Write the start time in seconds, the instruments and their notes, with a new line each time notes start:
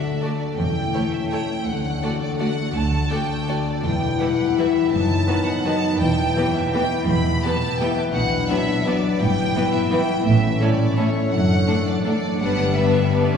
Already playing: harp D3 A3 D4, french horn section A3 D4, violin section E5
0.03 harp A4
0.22 viola section A3 F#4, violin section A4 D5, harp A5
0.41 harp A4
0.57 double bass section E1, cello section E2, harp E3, french horn section C#4, violin section G5
0.76 harp A3
0.94 viola section A3 E4, harp C#4, violin section A4 C#5
1.12 harp A4, violin section E5
1.31 viola section A3 E4, violin section A4 C#5 G5, harp A5
1.50 harp A4
1.66 cello section D2, double bass section D2, harp D3, french horn section A3 D4, violin section F#5
1.85 harp A3
2.03 viola section A3 F#4, harp D4, violin section A4 D5
2.21 harp A4, violin section D5
2.39 viola section A3 F#4, violin section A4 D5 F#5, harp A5
2.57 harp A4
2.74 cello section D2, double bass section D2, harp D3, violin section A5
2.92 harp A3
3.10 viola section A3 F#4, harp D4, violin section A4 D5 G5
3.30 harp A4
3.48 viola section A3 F#4, violin section A4 D5, harp A5
3.67 harp A4
3.84 double bass section E1, harp E2, cello section E2, french horn section B3 E4, violin section G5
4.02 harp B2
4.19 viola section E3 E4, harp G3, violin section G4 B4 F#5
4.39 harp B4
4.57 viola section E3 E4, violin section G4 B4 E5, harp G4
4.75 harp B4
4.93 double bass section F#1, cello section F#2, harp F#2, french horn section D#4, violin section A5
5.10 harp F#3
5.28 viola section D#3 B3, harp B3, violin section F#4 B4
5.47 harp B4, violin section F#5
5.65 viola section D#3 B3, violin section F#4 B4 A5, harp D#5
5.83 harp B4
6.00 double bass section E1, harp E2, cello section E2, french horn section B3 E4, violin section G5
6.17 harp B2
6.36 viola section E3 B3, harp B3, violin section G4 B4
6.54 harp B4, violin section E5
6.73 viola section E3 B3, violin section G4 B4 G5, harp E5
6.91 harp B4
7.08 double bass section E1, harp E2, cello section E2, violin section B5
7.26 harp B2
7.44 viola section E3 B3, harp B3, violin section G4 B4 A5
7.63 harp B4
7.81 viola section E3 B3, violin section G4 B4 G5, harp E5
7.98 harp B4
8.13 double bass section B1, cello section B2, harp B2, french horn section B3 D4, violin section F#5
8.31 harp F#3
8.48 viola section F#3 B3, harp B3, violin section D4 B4 E5
8.68 harp B4
8.86 viola section F#3 B3, violin section D4 B4 D5, harp D5
9.03 harp B4
9.20 double bass section G1, harp G2, cello section G2, french horn section E4, violin section G5
9.37 harp G3
9.55 viola section E3 B3, harp B3, violin section E4 B4
9.73 harp B4, violin section E5
9.91 viola section E3 B3, violin section E4 B4 G5, harp E5
10.09 harp B4
10.26 double bass section A1, harp A2, cello section A2, french horn section A3 C#4, violin section E5
10.43 harp E3
10.61 viola section A3 C#4, harp A3, violin section E4 A4 D5
10.80 harp C#5
10.97 viola section A3 C#4, violin section E4 A4 C#5, harp E5
11.15 harp C#5
11.32 double bass section F#1, harp F#2, cello section F#2, french horn section D4, violin section F#5
11.50 harp F#3
11.67 viola section A3 D4, harp A3, violin section D4 A4
11.86 violin section D5, harp D5
12.05 viola section A3 D4, violin section D4 A4 D5, harp A4
12.23 harp D5
12.40 double bass section G1, harp G2, cello section G2, viola section G3 B3, french horn section G3, violin section D4 B4 F#5
12.58 harp D3
12.76 harp G3, viola section G3 B3, violin section D4 B4 E5
12.95 harp B4
13.13 viola section G3 B3, violin section D4 B4 D5, harp D5
13.32 viola section C#4, harp B4